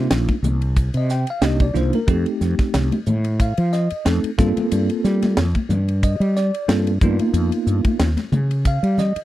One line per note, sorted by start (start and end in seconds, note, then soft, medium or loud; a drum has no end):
0.00 0.34 A#3 medium
0.00 0.34 D4 medium
0.00 0.34 D#4 medium
0.00 0.34 F4 medium
0.11 0.27 A#1 medium
0.11 snare loud
0.11 hi-hat pedal medium
0.11 ride medium
0.11 low conga medium
0.28 kick medium
0.28 ride soft
0.28 high conga medium
0.43 0.88 C2 medium
0.43 hi-hat pedal medium
0.43 high conga medium
0.43 low conga medium
0.62 ride medium
0.77 kick medium
0.77 hi-hat pedal medium
0.77 ride medium
0.94 1.24 C3 medium
0.94 1.11 D#5 medium
0.94 ride medium
1.09 1.28 G5 medium
1.09 snare soft
1.09 hi-hat pedal medium
1.27 1.44 F5 medium
1.27 ride medium
1.41 1.71 C2 medium
1.41 1.65 A#3 medium
1.41 1.65 D4 medium
1.41 1.66 D#4 medium
1.41 1.66 G4 medium
1.41 1.61 D#5 medium
1.41 snare loud
1.41 hi-hat pedal medium
1.41 ride medium
1.60 1.76 D5 medium
1.60 kick medium
1.60 ride medium
1.74 1.91 C2 medium
1.74 1.98 A#3 medium
1.74 1.98 D4 medium
1.74 1.98 D#4 medium
1.74 1.98 F4 medium
1.74 1.94 C5 medium
1.74 snare soft
1.74 hi-hat pedal medium
1.74 low conga medium
1.93 2.09 A#4 medium
1.93 ride medium
1.93 high conga medium
2.07 2.24 F2 medium
2.07 2.97 A3 medium
2.07 2.98 C4 medium
2.07 2.97 D#4 medium
2.07 2.98 G4 medium
2.07 2.29 A4 medium
2.07 kick medium
2.07 hi-hat pedal medium
2.07 ride medium
2.26 ride medium
2.41 2.57 F2 medium
2.41 snare soft
2.41 hi-hat pedal medium
2.59 kick medium
2.59 snare soft
2.59 ride medium
2.74 2.90 C2 medium
2.74 snare loud
2.74 hi-hat pedal medium
2.74 ride medium
2.74 low conga medium
2.92 muted fretless electric bass stroke soft
2.92 ride medium
2.92 high conga medium
3.06 3.52 A2 medium
3.06 hi-hat pedal medium
3.06 high conga medium
3.06 low conga medium
3.24 ride medium
3.40 3.73 F5 medium
3.40 kick medium
3.40 hi-hat pedal medium
3.40 ride medium
3.58 3.87 F3 medium
3.58 ride medium
3.73 4.05 D#5 medium
3.73 snare soft
3.73 hi-hat pedal medium
3.90 muted fretless electric bass stroke soft
3.90 ride medium
4.05 4.22 F2 medium
4.05 4.29 A3 medium
4.05 4.29 C4 medium
4.05 4.29 D#4 medium
4.05 4.29 A4 medium
4.05 snare loud
4.05 hi-hat pedal medium
4.05 ride medium
4.24 muted fretless electric bass stroke soft
4.24 ride medium
4.38 4.54 G2 medium
4.38 5.44 A#3 medium
4.38 5.44 C4 medium
4.38 5.45 F4 medium
4.38 5.45 A4 medium
4.38 kick loud
4.38 snare soft
4.38 hi-hat pedal medium
4.38 low conga medium
4.56 muted fretless electric bass stroke soft
4.56 ride medium
4.56 high conga medium
4.71 4.88 G2 loud
4.71 hi-hat pedal medium
4.71 ride medium
4.90 ride medium
5.04 5.34 G3 medium
5.04 snare soft
5.04 hi-hat pedal medium
5.22 snare soft
5.22 ride medium
5.22 high conga medium
5.37 5.53 F2 medium
5.37 snare loud
5.37 hi-hat pedal medium
5.37 ride medium
5.37 low conga medium
5.55 kick medium
5.55 ride medium
5.55 high conga medium
5.69 6.15 G2 medium
5.69 hi-hat pedal medium
5.69 high conga medium
5.69 low conga medium
5.88 ride medium
6.03 6.35 D#5 medium
6.03 kick medium
6.03 hi-hat pedal medium
6.03 ride medium
6.20 6.50 G3 medium
6.20 ride medium
6.37 6.68 D5 medium
6.37 snare soft
6.37 hi-hat pedal medium
6.54 ride medium
6.68 6.98 G2 medium
6.68 6.92 A#3 medium
6.68 6.92 C4 medium
6.68 6.92 F4 medium
6.68 6.92 A4 medium
6.68 snare medium
6.68 hi-hat pedal medium
6.68 ride medium
6.87 ride medium
7.01 7.18 G2 medium
7.01 8.08 A#3 medium
7.01 8.08 B3 medium
7.01 8.08 D#4 medium
7.01 8.08 F4 medium
7.01 kick loud
7.01 hi-hat pedal medium
7.01 low conga medium
7.19 ride medium
7.19 high conga medium
7.33 7.50 F2 loud
7.33 hi-hat pedal medium
7.33 ride medium
7.52 ride medium
7.67 7.83 G2 medium
7.67 hi-hat pedal medium
7.85 kick medium
7.85 ride medium
7.85 high conga medium
7.99 8.16 D#2 medium
7.99 snare loud
7.99 hi-hat pedal medium
7.99 ride medium
7.99 low conga medium
8.17 muted fretless electric bass stroke soft
8.17 snare soft
8.17 ride medium
8.17 high conga medium
8.32 8.78 C#3 medium
8.32 hi-hat pedal medium
8.32 high conga medium
8.32 low conga medium
8.51 ride medium
8.65 8.99 F5 medium
8.65 kick medium
8.65 hi-hat pedal medium
8.65 ride medium
8.83 9.12 G3 medium
8.83 ride medium
8.98 9.19 D#5 medium
8.98 snare soft
8.98 hi-hat pedal medium
8.98 low conga medium
9.16 muted fretless electric bass stroke soft
9.16 ride medium